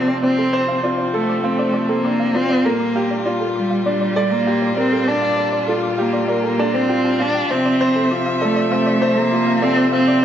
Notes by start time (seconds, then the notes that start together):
Already playing: C3 F3 C4 D4 F4 A4
0.08 D5
0.23 C4 D5
0.38 A4
0.53 C5 D6
0.68 F5
0.83 F4 D5
0.98 D5
1.13 A3 A4
1.29 D6
1.44 A3 C4 F5
1.59 D5
1.74 D5
1.89 A#3 A4
2.04 D4 D6
2.20 F5
2.35 C4 F4 D5
2.50 D5
2.65 A#2 G3 A#3 F4 A4 A#4
2.80 D6
2.95 G4 F5
3.11 D5
3.25 F4 D5
3.40 A4
3.56 G3 D6
3.70 F5
3.86 G3 D4 D5
4.01 D5
4.16 A4 D5
4.32 A#3 D6
4.47 G4 F5
4.62 D5
4.77 C4 A#4 D5
4.92 A4
5.07 D4 D6
5.22 F5
5.37 D5
5.52 D5
5.68 F4 A4
5.83 D6
5.98 A#3 G4 F5
6.13 D5
6.28 A#3 A#4 D5
6.43 A4
6.59 D4 A4
6.74 C4 C5
6.89 F4 G5
7.04 A5
7.19 D4 F4 F5
7.35 G5
7.50 C3 F3 C4 E5 F5
7.65 D5
7.80 C5 D5
7.96 A4
8.11 F4 D6
8.26 F5
8.41 A3 A4 D5
8.56 D5
8.71 A3 C4 F5
8.86 D5
9.01 C5 D5
9.16 A#3 A4
9.31 F4 D6
9.46 F5
9.62 C4 A4 D5
9.77 D5
9.92 C4 F5
10.08 D5